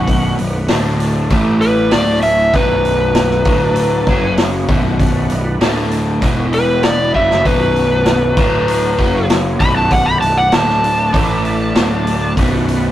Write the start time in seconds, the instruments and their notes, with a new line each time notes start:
Already playing: picked electric bass B0, overdriven electric guitar B1 F#2 B2, tonewheel organ D3 B3 F#4 B4, lead electric guitar C#4, electric slide guitar F#5
0.08 kick, open hi-hat
0.38 picked electric bass B0, overdriven electric guitar B1 F#2, open hi-hat
0.68 picked electric bass D1, overdriven electric guitar D2 A2 D3, tonewheel organ A3 D4 A4 D5, snare, open hi-hat
1.00 open hi-hat
1.30 picked electric bass A1, overdriven electric guitar A2 E3 A3, tonewheel organ A3 E4 A4 E5, kick, open hi-hat
1.61 lead electric guitar G3, electric slide guitar B4, open hi-hat
1.91 picked electric bass D1, overdriven electric guitar D2 A2 D3, lead electric guitar A3, electric slide guitar D5, snare, open hi-hat
2.22 lead electric guitar C#4, electric slide guitar E5, open hi-hat
2.53 picked electric bass B0, overdriven electric guitar B1 F#2 B2, lead electric guitar F#3, tonewheel organ B3 D4 F#4 B4, electric slide guitar B4, kick, open hi-hat
2.85 open hi-hat
3.15 snare, open hi-hat
3.31 snare
3.45 picked electric bass D1, overdriven electric guitar D2 A2 D3, tonewheel organ A3 D4 A4 D5, kick, open hi-hat
3.76 open hi-hat
4.06 picked electric bass F#1, overdriven electric guitar F#2 C#3 F#3, tonewheel organ F#3 C#4 F#4 C#5, kick, open hi-hat
4.37 snare, open hi-hat
4.68 picked electric bass B0, overdriven electric guitar B1 F#2 B2, tonewheel organ B3 D4 F#4 B4, kick, open hi-hat
5.00 kick, open hi-hat
5.30 picked electric bass B0, overdriven electric guitar B1 F#2, open hi-hat
5.60 picked electric bass D1, overdriven electric guitar D2 A2 D3, tonewheel organ A3 D4 A4 D5, snare, open hi-hat
5.91 open hi-hat
6.22 picked electric bass E1, overdriven electric guitar E2 B2 E3, tonewheel organ B3 E4 B4 E5, kick, open hi-hat
6.53 lead electric guitar G3, electric slide guitar B4, open hi-hat
6.83 lead electric guitar B3, electric slide guitar D5, snare, open hi-hat
7.14 picked electric bass F#1, overdriven electric guitar F#2 C#3 F#3, lead electric guitar B3, tonewheel organ D#4 G4 C5 D#5, electric slide guitar E5, kick
7.31 snare
7.36 tonewheel organ D4 F#4 B4 D5
7.44 picked electric bass B0, overdriven electric guitar B1 F#2 B2, lead electric guitar F#3, electric slide guitar B4, kick, open hi-hat
7.76 open hi-hat
8.06 snare, open hi-hat
8.37 picked electric bass D1, overdriven electric guitar D2 A2 D3, tonewheel organ A3 D4 A4 D5, kick, open hi-hat
8.68 open hi-hat
8.98 picked electric bass F#1, overdriven electric guitar F#2 C#3 F#3, tonewheel organ F#3 C#4 F#4 C#5, kick, open hi-hat
9.30 snare, open hi-hat
9.60 picked electric bass B0, overdriven electric guitar B1 F#2 B2, tonewheel organ B3 D4 F#4 B4, lead electric guitar F#4, electric slide guitar B5, kick, open hi-hat
9.77 lead electric guitar F#4, electric slide guitar A5
9.91 lead electric guitar D4, electric slide guitar F#5, kick, open hi-hat
10.06 lead electric guitar G4, electric slide guitar B5
10.20 picked electric bass B0, overdriven electric guitar B1 F#2, lead electric guitar F#4, electric slide guitar A5, open hi-hat
10.38 lead electric guitar D4, electric slide guitar F#5
10.51 picked electric bass D1, overdriven electric guitar D2 A2 D3, tonewheel organ A3 D4 A4 D5, lead electric guitar D4, electric slide guitar A5, snare, open hi-hat
10.69 snare
10.84 open hi-hat
11.13 picked electric bass A1, overdriven electric guitar A2 E3 A3, tonewheel organ A3 E4 A4 E5, kick, open hi-hat
11.45 open hi-hat
11.75 picked electric bass D1, overdriven electric guitar D2 A2 D3, tonewheel organ A3 D4 A4 D5, snare, open hi-hat
12.07 open hi-hat
12.36 picked electric bass B0, overdriven electric guitar B1 F#2 B2, tonewheel organ B3 D4 F#4 B4, kick, open hi-hat
12.68 open hi-hat